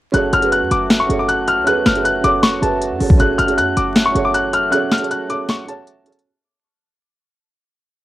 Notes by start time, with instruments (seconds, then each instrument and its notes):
0.12 808-style bass F#1, harmonium F#3 A3 F#4, felt piano C#4 F#4 G#4 A4, grand piano F#6, closed hi-hat
0.17 felt piano C#5
0.33 808-style bass F#1, grand piano F6, closed hi-hat
0.40 felt piano C#4 F#4 G#4 A4, closed hi-hat
0.45 felt piano B4
0.52 grand piano F#6, closed hi-hat
0.62 808-style bass F#2
0.71 808-style bass F#1, grand piano D6, closed hi-hat
0.90 snare, closed hi-hat
1.00 grand piano C#6
1.07 808-style bass F#1, felt piano C#4 F#4 G#4 A4, closed hi-hat
1.12 felt piano C#5
1.19 grand piano D6
1.28 grand piano F#6, closed hi-hat
1.48 grand piano F6, closed hi-hat
1.57 808-style bass C#2
1.64 felt piano C#4 F#4 G#4 A4, grand piano F#6, closed hi-hat
1.69 felt piano B4
1.86 808-style bass F#1, grand piano F6, snare, closed hi-hat
1.93 felt piano C#4 F#4 G#4 A4, closed hi-hat
1.98 felt piano B4
2.05 grand piano F#6, closed hi-hat
2.21 808-style bass F#1, felt piano C#4 F#4 G#4 A4, grand piano D6, closed hi-hat
2.26 felt piano C#5
2.43 808-style bass F1, grand piano C#6, snare, closed hi-hat
2.59 808-style bass F#1, felt piano C#4 F#4 G#4 A4, grand piano A5, closed hi-hat
2.64 felt piano B4
2.82 closed hi-hat
2.91 808-style bass F#2
2.98 808-style bass F#1, felt piano C#4 F#4 G#4 A4, open hi-hat
3.03 felt piano C#5
3.10 kick
3.17 808-style bass F#1, harmonium F#3, felt piano C#4 F#4 G#4 A4, grand piano F#6, closed hi-hat
3.22 felt piano C#5
3.38 808-style bass F#1, grand piano F6, closed hi-hat
3.46 felt piano C#4 F#4 G#4 A4, closed hi-hat
3.50 felt piano C#5
3.58 808-style bass F#2, grand piano F#6, closed hi-hat
3.77 808-style bass F#1, grand piano D6, closed hi-hat
3.96 snare, closed hi-hat
4.06 grand piano C#6
4.12 808-style bass F#1, felt piano C#4 F#4 G#4 A4, closed hi-hat
4.17 felt piano C#5
4.25 grand piano D6
4.34 grand piano F#6, closed hi-hat
4.53 grand piano F6, closed hi-hat
4.71 felt piano C#4 F#4 G#4 A4, grand piano F#6, closed hi-hat
4.76 felt piano C#5
4.91 grand piano F6, snare, closed hi-hat
4.98 felt piano C#4 F#4 G#4, closed hi-hat
5.02 felt piano A4 C#5, closed hi-hat
5.11 grand piano F#6, closed hi-hat
5.27 felt piano C#4 F#4 G#4 A4, grand piano D6, closed hi-hat
5.32 felt piano C#5
5.49 grand piano C#6, snare, closed hi-hat
5.65 felt piano C#4 F#4 G#4 A4, grand piano A5, closed hi-hat
5.70 felt piano C#5
5.87 closed hi-hat
6.04 felt piano C#4 F#4 G#4 A4, closed hi-hat, open hi-hat
6.09 felt piano C#5, closed hi-hat
6.19 closed hi-hat